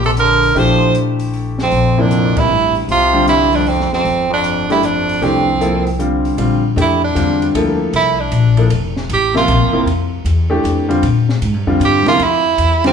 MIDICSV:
0, 0, Header, 1, 7, 480
1, 0, Start_track
1, 0, Tempo, 387847
1, 691, Time_signature, 3, 2, 24, 8
1, 16000, End_track
2, 0, Start_track
2, 0, Title_t, "Tenor saxophone"
2, 0, Program_c, 0, 66
2, 72, Note_on_c, 0, 69, 79
2, 140, Note_off_c, 0, 69, 0
2, 244, Note_on_c, 0, 70, 93
2, 726, Note_on_c, 0, 72, 92
2, 745, Note_off_c, 0, 70, 0
2, 1188, Note_off_c, 0, 72, 0
2, 2021, Note_on_c, 0, 60, 81
2, 2483, Note_on_c, 0, 62, 85
2, 2501, Note_off_c, 0, 60, 0
2, 2953, Note_on_c, 0, 64, 91
2, 2971, Note_off_c, 0, 62, 0
2, 3420, Note_off_c, 0, 64, 0
2, 3606, Note_on_c, 0, 65, 91
2, 4036, Note_off_c, 0, 65, 0
2, 4075, Note_on_c, 0, 64, 98
2, 4398, Note_on_c, 0, 62, 86
2, 4417, Note_off_c, 0, 64, 0
2, 4557, Note_on_c, 0, 60, 87
2, 4576, Note_off_c, 0, 62, 0
2, 4861, Note_off_c, 0, 60, 0
2, 4882, Note_on_c, 0, 60, 88
2, 5312, Note_off_c, 0, 60, 0
2, 5365, Note_on_c, 0, 62, 86
2, 5794, Note_off_c, 0, 62, 0
2, 5840, Note_on_c, 0, 64, 86
2, 6001, Note_on_c, 0, 62, 87
2, 6020, Note_off_c, 0, 64, 0
2, 6486, Note_on_c, 0, 60, 83
2, 6504, Note_off_c, 0, 62, 0
2, 7429, Note_off_c, 0, 60, 0
2, 8435, Note_on_c, 0, 64, 74
2, 8701, Note_off_c, 0, 64, 0
2, 8717, Note_on_c, 0, 62, 79
2, 9303, Note_off_c, 0, 62, 0
2, 9855, Note_on_c, 0, 64, 91
2, 10149, Note_on_c, 0, 62, 76
2, 10168, Note_off_c, 0, 64, 0
2, 10783, Note_off_c, 0, 62, 0
2, 11306, Note_on_c, 0, 67, 95
2, 11576, Note_off_c, 0, 67, 0
2, 11601, Note_on_c, 0, 65, 84
2, 12185, Note_off_c, 0, 65, 0
2, 14663, Note_on_c, 0, 67, 90
2, 14934, Note_off_c, 0, 67, 0
2, 14955, Note_on_c, 0, 65, 96
2, 15145, Note_on_c, 0, 64, 85
2, 15164, Note_off_c, 0, 65, 0
2, 15915, Note_off_c, 0, 64, 0
2, 15930, Note_on_c, 0, 60, 87
2, 16000, Note_off_c, 0, 60, 0
2, 16000, End_track
3, 0, Start_track
3, 0, Title_t, "Grand piano"
3, 0, Program_c, 1, 0
3, 682, Note_on_c, 1, 64, 65
3, 688, Note_on_c, 1, 57, 59
3, 689, Note_on_c, 1, 62, 60
3, 695, Note_on_c, 1, 67, 70
3, 2028, Note_off_c, 1, 64, 0
3, 2031, Note_off_c, 1, 57, 0
3, 2031, Note_off_c, 1, 62, 0
3, 2034, Note_off_c, 1, 67, 0
3, 2445, Note_on_c, 1, 48, 66
3, 2451, Note_on_c, 1, 53, 57
3, 2453, Note_on_c, 1, 58, 59
3, 2456, Note_on_c, 1, 64, 74
3, 3056, Note_off_c, 1, 48, 0
3, 3059, Note_off_c, 1, 53, 0
3, 3061, Note_off_c, 1, 58, 0
3, 3062, Note_off_c, 1, 64, 0
3, 3875, Note_on_c, 1, 50, 76
3, 3882, Note_on_c, 1, 55, 71
3, 3890, Note_on_c, 1, 65, 78
3, 3891, Note_on_c, 1, 60, 68
3, 4492, Note_off_c, 1, 50, 0
3, 4495, Note_off_c, 1, 55, 0
3, 4499, Note_off_c, 1, 65, 0
3, 4500, Note_off_c, 1, 60, 0
3, 5817, Note_on_c, 1, 52, 69
3, 5818, Note_on_c, 1, 57, 59
3, 5827, Note_on_c, 1, 62, 63
3, 5828, Note_on_c, 1, 67, 71
3, 5960, Note_off_c, 1, 52, 0
3, 5960, Note_off_c, 1, 57, 0
3, 5965, Note_off_c, 1, 62, 0
3, 5965, Note_off_c, 1, 67, 0
3, 6455, Note_on_c, 1, 52, 64
3, 6458, Note_on_c, 1, 57, 58
3, 6466, Note_on_c, 1, 62, 58
3, 6466, Note_on_c, 1, 67, 67
3, 6738, Note_off_c, 1, 52, 0
3, 6740, Note_off_c, 1, 57, 0
3, 6744, Note_off_c, 1, 62, 0
3, 6744, Note_off_c, 1, 67, 0
3, 6939, Note_on_c, 1, 53, 65
3, 6941, Note_on_c, 1, 58, 58
3, 6945, Note_on_c, 1, 69, 67
3, 6946, Note_on_c, 1, 64, 59
3, 7221, Note_off_c, 1, 53, 0
3, 7222, Note_off_c, 1, 58, 0
3, 7224, Note_off_c, 1, 64, 0
3, 7224, Note_off_c, 1, 69, 0
3, 7413, Note_on_c, 1, 50, 54
3, 7416, Note_on_c, 1, 55, 52
3, 7422, Note_on_c, 1, 60, 50
3, 7426, Note_on_c, 1, 65, 60
3, 7878, Note_off_c, 1, 50, 0
3, 7885, Note_off_c, 1, 55, 0
3, 7888, Note_off_c, 1, 60, 0
3, 7888, Note_off_c, 1, 65, 0
3, 7896, Note_on_c, 1, 50, 56
3, 7903, Note_on_c, 1, 55, 54
3, 7906, Note_on_c, 1, 60, 53
3, 7907, Note_on_c, 1, 65, 64
3, 8180, Note_off_c, 1, 50, 0
3, 8183, Note_off_c, 1, 55, 0
3, 8185, Note_off_c, 1, 60, 0
3, 8185, Note_off_c, 1, 65, 0
3, 8366, Note_on_c, 1, 52, 53
3, 8371, Note_on_c, 1, 57, 50
3, 8376, Note_on_c, 1, 62, 54
3, 8384, Note_on_c, 1, 67, 65
3, 8655, Note_off_c, 1, 52, 0
3, 8657, Note_off_c, 1, 57, 0
3, 8660, Note_off_c, 1, 62, 0
3, 8663, Note_off_c, 1, 67, 0
3, 8850, Note_on_c, 1, 55, 54
3, 8852, Note_on_c, 1, 50, 62
3, 8855, Note_on_c, 1, 60, 49
3, 8857, Note_on_c, 1, 65, 58
3, 9342, Note_on_c, 1, 53, 69
3, 9346, Note_on_c, 1, 64, 57
3, 9349, Note_on_c, 1, 58, 57
3, 9349, Note_on_c, 1, 69, 76
3, 9585, Note_off_c, 1, 55, 0
3, 9586, Note_off_c, 1, 50, 0
3, 9588, Note_off_c, 1, 60, 0
3, 9589, Note_off_c, 1, 65, 0
3, 10071, Note_off_c, 1, 53, 0
3, 10073, Note_off_c, 1, 64, 0
3, 10075, Note_off_c, 1, 58, 0
3, 10075, Note_off_c, 1, 69, 0
3, 10608, Note_on_c, 1, 53, 61
3, 10615, Note_on_c, 1, 58, 56
3, 10615, Note_on_c, 1, 64, 54
3, 10618, Note_on_c, 1, 69, 71
3, 10756, Note_off_c, 1, 53, 0
3, 10760, Note_off_c, 1, 58, 0
3, 10760, Note_off_c, 1, 64, 0
3, 10761, Note_off_c, 1, 69, 0
3, 11562, Note_on_c, 1, 48, 71
3, 11563, Note_on_c, 1, 53, 60
3, 11569, Note_on_c, 1, 58, 65
3, 11576, Note_on_c, 1, 76, 78
3, 12015, Note_off_c, 1, 48, 0
3, 12015, Note_off_c, 1, 53, 0
3, 12018, Note_off_c, 1, 58, 0
3, 12022, Note_off_c, 1, 76, 0
3, 12036, Note_on_c, 1, 48, 66
3, 12039, Note_on_c, 1, 58, 62
3, 12042, Note_on_c, 1, 53, 59
3, 12044, Note_on_c, 1, 64, 71
3, 12190, Note_off_c, 1, 48, 0
3, 12192, Note_off_c, 1, 58, 0
3, 12193, Note_off_c, 1, 53, 0
3, 12195, Note_off_c, 1, 64, 0
3, 12991, Note_on_c, 1, 52, 74
3, 12991, Note_on_c, 1, 57, 66
3, 12994, Note_on_c, 1, 62, 66
3, 13000, Note_on_c, 1, 67, 82
3, 13449, Note_off_c, 1, 52, 0
3, 13449, Note_off_c, 1, 57, 0
3, 13450, Note_off_c, 1, 62, 0
3, 13453, Note_off_c, 1, 67, 0
3, 13472, Note_on_c, 1, 50, 67
3, 13475, Note_on_c, 1, 55, 65
3, 13478, Note_on_c, 1, 60, 65
3, 13488, Note_on_c, 1, 65, 75
3, 13628, Note_off_c, 1, 50, 0
3, 13629, Note_off_c, 1, 55, 0
3, 13631, Note_off_c, 1, 60, 0
3, 13636, Note_off_c, 1, 65, 0
3, 14444, Note_on_c, 1, 50, 74
3, 14445, Note_on_c, 1, 55, 66
3, 14449, Note_on_c, 1, 60, 66
3, 14452, Note_on_c, 1, 65, 74
3, 14895, Note_off_c, 1, 50, 0
3, 14895, Note_off_c, 1, 55, 0
3, 14898, Note_off_c, 1, 60, 0
3, 14899, Note_off_c, 1, 65, 0
3, 14922, Note_on_c, 1, 48, 68
3, 14932, Note_on_c, 1, 58, 62
3, 14933, Note_on_c, 1, 53, 63
3, 14943, Note_on_c, 1, 64, 83
3, 15072, Note_off_c, 1, 48, 0
3, 15078, Note_off_c, 1, 53, 0
3, 15078, Note_off_c, 1, 58, 0
3, 15083, Note_off_c, 1, 64, 0
3, 15897, Note_on_c, 1, 50, 71
3, 15899, Note_on_c, 1, 55, 63
3, 15908, Note_on_c, 1, 60, 65
3, 15909, Note_on_c, 1, 65, 79
3, 16000, Note_off_c, 1, 50, 0
3, 16000, Note_off_c, 1, 55, 0
3, 16000, Note_off_c, 1, 60, 0
3, 16000, Note_off_c, 1, 65, 0
3, 16000, End_track
4, 0, Start_track
4, 0, Title_t, "Trombone"
4, 0, Program_c, 2, 57
4, 54, Note_on_c, 2, 48, 75
4, 126, Note_off_c, 2, 48, 0
4, 217, Note_on_c, 2, 50, 83
4, 708, Note_on_c, 2, 53, 82
4, 727, Note_off_c, 2, 50, 0
4, 1179, Note_off_c, 2, 53, 0
4, 1997, Note_on_c, 2, 41, 78
4, 2473, Note_off_c, 2, 41, 0
4, 2473, Note_on_c, 2, 41, 78
4, 2949, Note_on_c, 2, 43, 80
4, 2967, Note_off_c, 2, 41, 0
4, 3418, Note_off_c, 2, 43, 0
4, 3569, Note_on_c, 2, 48, 93
4, 4016, Note_off_c, 2, 48, 0
4, 4062, Note_on_c, 2, 43, 80
4, 4368, Note_on_c, 2, 41, 79
4, 4387, Note_off_c, 2, 43, 0
4, 4548, Note_off_c, 2, 41, 0
4, 4548, Note_on_c, 2, 41, 76
4, 4845, Note_off_c, 2, 41, 0
4, 4853, Note_on_c, 2, 41, 76
4, 5297, Note_off_c, 2, 41, 0
4, 5320, Note_on_c, 2, 41, 75
4, 5770, Note_off_c, 2, 41, 0
4, 5805, Note_on_c, 2, 43, 75
4, 5960, Note_on_c, 2, 41, 78
4, 5978, Note_off_c, 2, 43, 0
4, 6445, Note_off_c, 2, 41, 0
4, 6445, Note_on_c, 2, 41, 67
4, 7409, Note_off_c, 2, 41, 0
4, 16000, End_track
5, 0, Start_track
5, 0, Title_t, "Upright bass"
5, 0, Program_c, 3, 32
5, 0, Note_on_c, 3, 34, 86
5, 639, Note_off_c, 3, 34, 0
5, 686, Note_on_c, 3, 34, 76
5, 2078, Note_off_c, 3, 34, 0
5, 2125, Note_on_c, 3, 34, 80
5, 3038, Note_off_c, 3, 34, 0
5, 3085, Note_on_c, 3, 33, 82
5, 3534, Note_off_c, 3, 33, 0
5, 3569, Note_on_c, 3, 36, 76
5, 4797, Note_off_c, 3, 36, 0
5, 5008, Note_on_c, 3, 31, 75
5, 6401, Note_off_c, 3, 31, 0
5, 6445, Note_on_c, 3, 36, 74
5, 7840, Note_off_c, 3, 36, 0
5, 7886, Note_on_c, 3, 34, 74
5, 8355, Note_off_c, 3, 34, 0
5, 8367, Note_on_c, 3, 41, 91
5, 8836, Note_off_c, 3, 41, 0
5, 8850, Note_on_c, 3, 40, 91
5, 9318, Note_off_c, 3, 40, 0
5, 9337, Note_on_c, 3, 38, 73
5, 9801, Note_off_c, 3, 38, 0
5, 9811, Note_on_c, 3, 36, 83
5, 10278, Note_off_c, 3, 36, 0
5, 10294, Note_on_c, 3, 34, 98
5, 10759, Note_off_c, 3, 34, 0
5, 10772, Note_on_c, 3, 29, 76
5, 11239, Note_off_c, 3, 29, 0
5, 11253, Note_on_c, 3, 33, 90
5, 11719, Note_off_c, 3, 33, 0
5, 11731, Note_on_c, 3, 34, 99
5, 11889, Note_off_c, 3, 34, 0
5, 11889, Note_on_c, 3, 31, 54
5, 12037, Note_off_c, 3, 31, 0
5, 12045, Note_on_c, 3, 29, 61
5, 12193, Note_off_c, 3, 29, 0
5, 12200, Note_on_c, 3, 41, 78
5, 12672, Note_off_c, 3, 41, 0
5, 12680, Note_on_c, 3, 40, 85
5, 13152, Note_off_c, 3, 40, 0
5, 13165, Note_on_c, 3, 41, 91
5, 13634, Note_off_c, 3, 41, 0
5, 13646, Note_on_c, 3, 46, 80
5, 14115, Note_off_c, 3, 46, 0
5, 14129, Note_on_c, 3, 44, 85
5, 14278, Note_off_c, 3, 44, 0
5, 14278, Note_on_c, 3, 43, 58
5, 14429, Note_off_c, 3, 43, 0
5, 14437, Note_on_c, 3, 41, 66
5, 14593, Note_off_c, 3, 41, 0
5, 14599, Note_on_c, 3, 43, 95
5, 14900, Note_off_c, 3, 43, 0
5, 15087, Note_on_c, 3, 41, 78
5, 15555, Note_off_c, 3, 41, 0
5, 15568, Note_on_c, 3, 40, 87
5, 16000, Note_off_c, 3, 40, 0
5, 16000, End_track
6, 0, Start_track
6, 0, Title_t, "Muted upright bass strokes"
6, 4848, Note_on_c, 9, 29, 36
6, 4972, Note_off_c, 9, 29, 0
6, 14918, Note_on_c, 9, 29, 40
6, 15042, Note_off_c, 9, 29, 0
6, 16000, End_track
7, 0, Start_track
7, 0, Title_t, "Drums"
7, 51, Note_on_c, 9, 46, 40
7, 175, Note_off_c, 9, 46, 0
7, 208, Note_on_c, 9, 42, 47
7, 332, Note_off_c, 9, 42, 0
7, 532, Note_on_c, 9, 46, 37
7, 656, Note_off_c, 9, 46, 0
7, 695, Note_on_c, 9, 46, 44
7, 819, Note_off_c, 9, 46, 0
7, 1172, Note_on_c, 9, 42, 51
7, 1296, Note_off_c, 9, 42, 0
7, 1480, Note_on_c, 9, 46, 40
7, 1603, Note_off_c, 9, 46, 0
7, 1652, Note_on_c, 9, 46, 38
7, 1776, Note_off_c, 9, 46, 0
7, 1962, Note_on_c, 9, 38, 47
7, 2086, Note_off_c, 9, 38, 0
7, 2123, Note_on_c, 9, 46, 44
7, 2246, Note_off_c, 9, 46, 0
7, 2609, Note_on_c, 9, 42, 53
7, 2733, Note_off_c, 9, 42, 0
7, 2927, Note_on_c, 9, 51, 75
7, 2928, Note_on_c, 9, 36, 88
7, 3051, Note_off_c, 9, 36, 0
7, 3051, Note_off_c, 9, 51, 0
7, 3402, Note_on_c, 9, 46, 35
7, 3526, Note_off_c, 9, 46, 0
7, 3573, Note_on_c, 9, 46, 46
7, 3697, Note_off_c, 9, 46, 0
7, 4053, Note_on_c, 9, 42, 52
7, 4177, Note_off_c, 9, 42, 0
7, 4365, Note_on_c, 9, 46, 38
7, 4489, Note_off_c, 9, 46, 0
7, 4537, Note_on_c, 9, 46, 42
7, 4661, Note_off_c, 9, 46, 0
7, 4706, Note_on_c, 9, 38, 30
7, 4830, Note_off_c, 9, 38, 0
7, 4863, Note_on_c, 9, 38, 40
7, 4986, Note_off_c, 9, 38, 0
7, 5015, Note_on_c, 9, 46, 42
7, 5139, Note_off_c, 9, 46, 0
7, 5494, Note_on_c, 9, 42, 53
7, 5618, Note_off_c, 9, 42, 0
7, 5819, Note_on_c, 9, 46, 40
7, 5942, Note_off_c, 9, 46, 0
7, 5978, Note_on_c, 9, 42, 48
7, 6102, Note_off_c, 9, 42, 0
7, 6303, Note_on_c, 9, 46, 37
7, 6426, Note_off_c, 9, 46, 0
7, 6465, Note_on_c, 9, 46, 44
7, 6589, Note_off_c, 9, 46, 0
7, 6947, Note_on_c, 9, 42, 51
7, 7071, Note_off_c, 9, 42, 0
7, 7260, Note_on_c, 9, 46, 38
7, 7384, Note_off_c, 9, 46, 0
7, 7422, Note_on_c, 9, 42, 50
7, 7546, Note_off_c, 9, 42, 0
7, 7735, Note_on_c, 9, 46, 39
7, 7859, Note_off_c, 9, 46, 0
7, 7896, Note_on_c, 9, 51, 59
7, 8020, Note_off_c, 9, 51, 0
7, 8387, Note_on_c, 9, 44, 54
7, 8387, Note_on_c, 9, 51, 65
7, 8511, Note_off_c, 9, 44, 0
7, 8511, Note_off_c, 9, 51, 0
7, 8863, Note_on_c, 9, 44, 61
7, 8863, Note_on_c, 9, 51, 56
7, 8987, Note_off_c, 9, 44, 0
7, 8987, Note_off_c, 9, 51, 0
7, 9184, Note_on_c, 9, 51, 42
7, 9307, Note_off_c, 9, 51, 0
7, 9344, Note_on_c, 9, 51, 69
7, 9468, Note_off_c, 9, 51, 0
7, 9819, Note_on_c, 9, 51, 62
7, 9943, Note_off_c, 9, 51, 0
7, 10292, Note_on_c, 9, 44, 48
7, 10292, Note_on_c, 9, 51, 62
7, 10416, Note_off_c, 9, 44, 0
7, 10416, Note_off_c, 9, 51, 0
7, 10607, Note_on_c, 9, 51, 46
7, 10731, Note_off_c, 9, 51, 0
7, 10770, Note_on_c, 9, 51, 66
7, 10894, Note_off_c, 9, 51, 0
7, 11094, Note_on_c, 9, 38, 39
7, 11218, Note_off_c, 9, 38, 0
7, 11256, Note_on_c, 9, 44, 48
7, 11256, Note_on_c, 9, 51, 72
7, 11379, Note_off_c, 9, 44, 0
7, 11379, Note_off_c, 9, 51, 0
7, 11576, Note_on_c, 9, 38, 51
7, 11700, Note_off_c, 9, 38, 0
7, 11731, Note_on_c, 9, 44, 59
7, 11731, Note_on_c, 9, 51, 57
7, 11855, Note_off_c, 9, 44, 0
7, 11855, Note_off_c, 9, 51, 0
7, 12218, Note_on_c, 9, 51, 60
7, 12342, Note_off_c, 9, 51, 0
7, 12693, Note_on_c, 9, 44, 62
7, 12693, Note_on_c, 9, 51, 68
7, 12816, Note_off_c, 9, 44, 0
7, 12816, Note_off_c, 9, 51, 0
7, 13180, Note_on_c, 9, 44, 52
7, 13180, Note_on_c, 9, 51, 60
7, 13304, Note_off_c, 9, 44, 0
7, 13304, Note_off_c, 9, 51, 0
7, 13497, Note_on_c, 9, 51, 44
7, 13621, Note_off_c, 9, 51, 0
7, 13649, Note_on_c, 9, 51, 62
7, 13772, Note_off_c, 9, 51, 0
7, 13973, Note_on_c, 9, 38, 45
7, 14097, Note_off_c, 9, 38, 0
7, 14131, Note_on_c, 9, 44, 48
7, 14131, Note_on_c, 9, 51, 63
7, 14255, Note_off_c, 9, 44, 0
7, 14255, Note_off_c, 9, 51, 0
7, 14615, Note_on_c, 9, 44, 52
7, 14615, Note_on_c, 9, 51, 62
7, 14739, Note_off_c, 9, 44, 0
7, 14739, Note_off_c, 9, 51, 0
7, 14929, Note_on_c, 9, 51, 44
7, 14932, Note_on_c, 9, 38, 59
7, 15052, Note_off_c, 9, 51, 0
7, 15056, Note_off_c, 9, 38, 0
7, 15092, Note_on_c, 9, 51, 59
7, 15216, Note_off_c, 9, 51, 0
7, 15571, Note_on_c, 9, 44, 48
7, 15571, Note_on_c, 9, 51, 72
7, 15694, Note_off_c, 9, 44, 0
7, 15694, Note_off_c, 9, 51, 0
7, 15891, Note_on_c, 9, 51, 51
7, 15895, Note_on_c, 9, 38, 47
7, 16000, Note_off_c, 9, 38, 0
7, 16000, Note_off_c, 9, 51, 0
7, 16000, End_track
0, 0, End_of_file